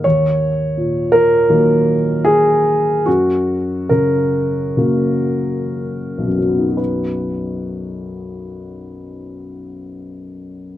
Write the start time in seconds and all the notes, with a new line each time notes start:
0.04 D#2 C#5
0.77 A#2
1.12 A#4
1.49 D#3 F#3 A#3
2.25 G#4
3.06 F#2 F#4
3.89 C#3 A#4
4.77 C#3 F#3 A#3
6.18 B1
6.28 F#2
6.38 F#3
6.49 B3
6.58 D#4
6.68 F#4
6.77 B4